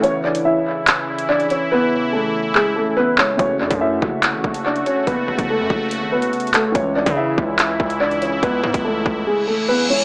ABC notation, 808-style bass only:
X:1
M:4/4
L:1/16
Q:1/4=143
K:C#phr
V:1 name="808-style bass" clef=bass
z16 | z16 | F,,,2 F,, F,,3 F,,,3 A,,, F,,,4 z2 | F,,,2 F,,, F,,,2 F,, F,,,3 G,,,3/2 F,,,3/2 z4 |
C,,3 C,3 C,,4 C,,6 | C,,2 G,, C,,3 C,,2 z8 |]